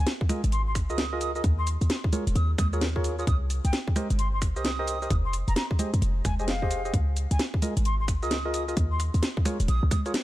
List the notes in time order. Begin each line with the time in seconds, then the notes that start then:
0.07 snare, closed hi-hat, shaker
0.21 kick
0.29 F4 G#4 A#4 D#5, finger snap, open hi-hat, high conga, shaker
0.44 G#1, closed hi-hat, shaker
0.52 C6, closed hi-hat, shaker
0.67 C6
0.75 finger snap, kick, open hi-hat, shaker
0.90 C#2 F4 G#4 A#4 D#5 D#6, shaker
0.98 snare, closed hi-hat, shaker
1.13 F4 G#4 A#4 D#5
1.21 D#6, open hi-hat, shaker
1.35 F4 G#4 A#4 D#5 D#6, shaker
1.44 D#2, kick, closed hi-hat, shaker
1.59 C6
1.67 open hi-hat, shaker
1.81 D#2, open hi-hat, shaker
1.90 snare, closed hi-hat, shaker
2.04 kick
2.13 F4 G#4 A#4 C#5, open hi-hat, high conga, shaker
2.27 D#1, closed hi-hat, shaker
2.36 D#2 D#6, closed hi-hat, shaker
2.58 D#2 D#6, finger snap, kick, open hi-hat, high conga, shaker
2.73 F4 G#4 A#4 C#5 D#6, shaker
2.81 snare, closed hi-hat, shaker
2.96 F4 G#4 A#4 C#5, kick
3.04 open hi-hat, shaker
3.19 F4 G#4 A#4 C#5 D#6, shaker
3.27 C2 D#6, kick, closed hi-hat, shaker
3.50 open hi-hat, shaker
3.64 C2 G5, closed hi-hat, shaker
3.73 snare, closed hi-hat, shaker
3.88 kick
3.96 G4 A#4 C5 D#5, finger snap, open hi-hat, high conga, shaker
4.10 G1, closed hi-hat, shaker
4.19 C6, closed hi-hat, shaker
4.33 C6
4.42 finger snap, kick, open hi-hat, shaker
4.56 C2 G4 A#4 C5 D#5 D#6, shaker
4.65 snare, closed hi-hat, shaker
4.79 G4 A#4 C5 D#5
4.88 open hi-hat, shaker
5.02 G4 A#4 C5 D#5, shaker
5.10 F1, kick, closed hi-hat, shaker
5.25 C6
5.33 open hi-hat, shaker
5.48 F1 A#5, open hi-hat, shaker
5.56 A#5, snare, closed hi-hat, shaker
5.71 kick
5.79 G4 G#4 C5 D#5, open hi-hat, high conga, shaker
5.94 F2, closed hi-hat, shaker
6.02 F1, closed hi-hat, shaker
6.25 F1 G#5, finger snap, kick, open hi-hat, high conga, shaker
6.39 G4 G#4 C5 D#5 G#5, shaker
6.48 F5, snare, closed hi-hat, shaker
6.62 G4 G#4 C5 D#5, kick
6.71 open hi-hat, shaker
6.85 G4 G#4 C5 D#5, shaker
6.94 C#2, kick, closed hi-hat, shaker
7.17 open hi-hat, shaker
7.31 C#2 G#5, closed hi-hat, shaker
7.39 snare, closed hi-hat, shaker
7.54 kick
7.62 F4 G#4 A#4 D#5, open hi-hat, high conga, shaker
7.77 G#1, closed hi-hat, shaker
7.85 C6, closed hi-hat, shaker
8.00 C6
8.08 finger snap, kick, open hi-hat, shaker
8.23 C#2 F4 G#4 A#4 D#5 D#6, shaker
8.31 snare, closed hi-hat, shaker
8.45 F4 G#4 A#4 D#5
8.54 D#6, open hi-hat, shaker
8.68 F4 G#4 A#4 D#5 D#6, shaker
8.77 D#2, kick, closed hi-hat, shaker
8.91 C6
9.00 finger snap, open hi-hat, shaker
9.14 D#2, open hi-hat, shaker
9.23 snare, closed hi-hat, shaker
9.37 kick
9.45 F4 G#4 A#4 C#5, finger snap, open hi-hat, high conga, shaker
9.60 D#1, closed hi-hat, shaker
9.68 A#1 D#6, closed hi-hat, shaker
9.83 C#2
9.91 D#6, finger snap, kick, open hi-hat, high conga, shaker
10.06 F4 G#4 A#4 C#5 D#6, closed hi-hat, shaker
10.14 snare, closed hi-hat, shaker